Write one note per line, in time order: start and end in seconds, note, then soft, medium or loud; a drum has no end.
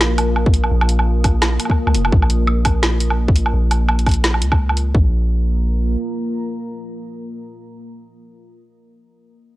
0.00 0.70 A#1 medium
0.00 4.91 A#3 medium
0.00 4.91 F4 medium
0.00 4.91 A#4 medium
0.00 4.93 D#6 medium
0.00 snare loud
0.00 low woodblock soft
0.18 closed hi-hat medium
0.18 low woodblock medium
0.36 low woodblock soft
0.46 kick loud
0.54 closed hi-hat medium
0.64 low woodblock soft
0.71 1.58 A#1 loud
0.81 low woodblock medium
0.89 closed hi-hat medium
0.99 low woodblock soft
1.24 kick medium
1.24 closed hi-hat medium
1.24 low woodblock soft
1.42 snare loud
1.42 low woodblock medium
1.60 closed hi-hat medium
1.60 low woodblock soft
1.65 low woodblock soft
1.70 kick medium
1.70 low woodblock soft
1.87 1.96 C#2 loud
1.87 low woodblock soft
1.94 2.11 F1 loud
1.94 closed hi-hat medium
2.05 low woodblock medium
2.12 3.53 A#1 medium
2.12 kick loud
2.22 low woodblock soft
2.30 closed hi-hat medium
2.47 low woodblock medium
2.65 kick soft
2.65 closed hi-hat medium
2.65 low woodblock medium
2.83 snare loud
2.83 low woodblock soft
3.00 closed hi-hat medium
3.10 low woodblock soft
3.28 kick medium
3.36 closed hi-hat medium
3.46 low woodblock medium
3.54 4.43 A#1 medium
3.71 closed hi-hat medium
3.71 low woodblock soft
3.89 low woodblock medium
3.99 closed hi-hat soft
4.07 kick medium
4.07 closed hi-hat soft
4.07 low woodblock soft
4.09 closed hi-hat soft
4.11 closed hi-hat soft
4.14 closed hi-hat soft
4.24 snare loud
4.34 low woodblock soft
4.42 4.94 C#2 medium
4.42 closed hi-hat medium
4.52 kick medium
4.52 low woodblock medium
4.69 low woodblock soft
4.77 closed hi-hat medium
4.94 5.96 A#1 medium
4.94 8.00 A#3 medium
4.94 8.00 F4 medium
4.94 8.00 A#4 medium
4.94 8.00 A#5 medium
4.94 kick loud